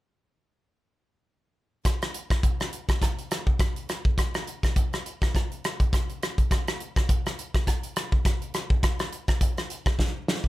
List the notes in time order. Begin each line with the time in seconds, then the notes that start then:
1.85 kick, cross-stick, closed hi-hat
2.02 cross-stick, closed hi-hat
2.14 closed hi-hat
2.30 kick, cross-stick, closed hi-hat
2.43 kick, closed hi-hat
2.60 cross-stick, closed hi-hat
2.73 closed hi-hat
2.89 kick, cross-stick, closed hi-hat
3.02 kick, cross-stick, closed hi-hat
3.18 closed hi-hat
3.31 cross-stick, closed hi-hat
3.47 kick
3.59 kick, cross-stick, closed hi-hat
3.76 closed hi-hat
3.89 cross-stick, closed hi-hat
4.05 kick
4.18 kick, cross-stick, closed hi-hat
4.34 cross-stick, closed hi-hat
4.47 closed hi-hat
4.63 kick, cross-stick, closed hi-hat
4.76 kick, closed hi-hat
4.93 cross-stick, closed hi-hat
5.06 closed hi-hat
5.22 kick, cross-stick
5.35 kick, cross-stick, closed hi-hat
5.52 closed hi-hat
5.64 cross-stick, closed hi-hat
5.80 kick, closed hi-hat
5.93 kick, cross-stick, closed hi-hat
6.09 closed hi-hat
6.22 cross-stick, closed hi-hat
6.38 kick, closed hi-hat
6.51 kick, cross-stick, closed hi-hat
6.67 cross-stick, closed hi-hat
6.80 closed hi-hat
6.96 kick, cross-stick, closed hi-hat
7.09 kick, closed hi-hat
7.26 cross-stick, closed hi-hat
7.39 closed hi-hat
7.54 kick, cross-stick, closed hi-hat
7.67 kick, cross-stick, closed hi-hat
7.83 closed hi-hat
7.96 cross-stick, closed hi-hat
8.12 kick
8.25 kick, cross-stick, closed hi-hat
8.42 closed hi-hat
8.54 cross-stick, closed hi-hat
8.70 kick
8.83 kick, cross-stick, closed hi-hat
8.99 cross-stick, closed hi-hat
9.12 closed hi-hat
9.28 kick, cross-stick, closed hi-hat
9.41 kick, closed hi-hat
9.57 cross-stick, closed hi-hat
9.70 closed hi-hat
9.86 kick, cross-stick
9.99 kick, snare
10.28 snare
10.44 kick